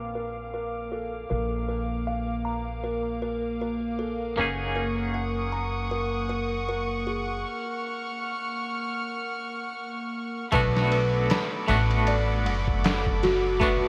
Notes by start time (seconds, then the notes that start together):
Already playing: A#1 A#3 C4 D4 F4 A#4 F5 D6
0.15 A#4
0.54 A#4
0.92 A4
1.30 A#1 A#4
1.69 A#4
2.07 F5
2.45 A#5
2.84 A#4
3.22 A#4
3.61 A#4
3.99 A4
4.37 F#1 A#3 C#4 D#4 G#4 A#4 F#5 C#6 D#6
4.76 A#4
5.14 F#5
5.52 A#5
5.91 A#4
6.29 A#4
6.69 A#4
7.07 G#4
7.45 F6
10.52 B1 A3 B3 D4 F#4 A4 B4 F#5 B5 D6, kick, ride
10.77 snare
10.91 B4, ride
11.30 B5, snare, ride
11.68 A1 A3 B3 D4 F#4 F#5, ride
11.91 ride
12.07 D5, ride
12.46 F#1 F#5, ride
12.68 kick
12.84 F#5, snare, ride
13.06 kick
13.23 F#4, snare, ride
13.60 A3 B3 D4 F#4 B4, kick, ride